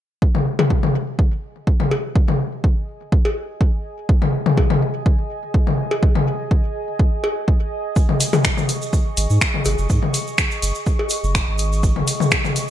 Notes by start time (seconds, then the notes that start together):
0.22 G#4, kick
0.35 high tom
0.48 G#5
0.59 high tom, cowbell
0.70 kick
0.76 D#5
0.83 high tom
1.19 kick
1.67 kick
1.80 high tom
1.91 cowbell
2.16 kick
2.28 high tom
2.64 kick
3.12 kick
3.25 cowbell
3.61 kick
4.09 kick
4.22 high tom
4.46 high tom
4.57 kick, cowbell
4.70 high tom
5.06 kick
5.54 kick
5.67 high tom
5.91 cowbell
6.03 kick
6.15 high tom
6.51 kick
6.99 kick
7.24 cowbell
7.48 kick
7.96 kick, shaker
8.09 high tom
8.20 C#6, open hi-hat, shaker
8.33 high tom, cowbell, shaker
8.44 finger snap, kick, shaker
8.57 high tom, shaker
8.69 open hi-hat, shaker
8.82 shaker
8.93 kick, shaker
9.17 G#1, open hi-hat, shaker
9.30 G#2, shaker
9.41 finger snap, kick, shaker
9.54 high tom
9.65 G#1, open hi-hat, cowbell, shaker
9.78 F#1, shaker
9.90 G#2, kick, shaker
10.03 high tom
10.14 open hi-hat, shaker
10.27 shaker
10.38 finger snap, kick, shaker
10.51 shaker
10.62 F#1, open hi-hat, shaker
10.75 shaker
10.86 kick, shaker
10.99 cowbell
11.10 open hi-hat, shaker
11.24 F#1, shaker
11.35 finger snap, kick, shaker
11.48 G#1
11.58 open hi-hat, shaker
11.73 shaker
11.83 kick, shaker
11.96 high tom
12.08 open hi-hat, shaker
12.20 high tom, shaker
12.31 finger snap, kick, cowbell, shaker
12.44 high tom, shaker
12.56 open hi-hat, shaker